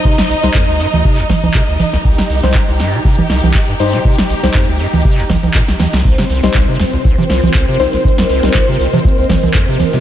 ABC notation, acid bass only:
X:1
M:4/4
L:1/16
Q:"Swing 16ths" 1/4=120
K:Cm
V:1 name="Acid bass" clef=bass
C, C,, B,,, C,, F,, D,, G,, D,, C, C,, B,,, C,, C, D,, B,,, C,, | C,, C,, C,, C,, z C,, G,, C, C, C,, C,, C,, z G,, G,, C, | C, C,, B,,, C,, F,, D,, G,, D,, C, C,, C,, C,, B,, C,, E,, C,, | C,, C, C,, C,, C,, C, E,, C,, C,, C, C,, C,, C,, C, C,, C,, |
D,, E,, C,, C,, B,,, C, C,, C, D,, C,, C,, C,, F,, C, E,, C, |]